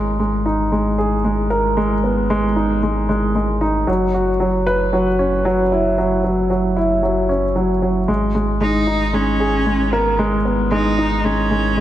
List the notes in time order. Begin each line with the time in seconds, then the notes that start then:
Already playing: G#1 G#3
0.19 G#3
0.46 D#4
0.72 G#3
0.98 G#4
1.24 G#3
1.50 A#4
1.77 G#3
2.04 B3
2.30 G#3
2.56 D#4
2.83 G#3
3.09 G#3
3.35 G#3
3.61 D#4
3.87 F#1 F#3
4.14 F#4
4.40 F#3
4.67 B4
4.93 F#3
5.19 C#4
5.45 F#3
5.72 E4
5.98 F#3
6.24 F#3
6.50 F#3
6.76 E4
7.03 F#3
7.29 C#4
7.56 F#3
7.82 F#3
8.08 G#1 G#3
8.35 G#3
8.61 G#3 D#4
8.87 D#4
9.13 G#3 C#4
9.40 G#4
9.66 G#3
9.92 B3 A#4
10.19 G#3
10.45 B3
10.71 G#3 D#4
10.98 D#4
11.24 G#3 C#4
11.51 G#3
11.77 G#3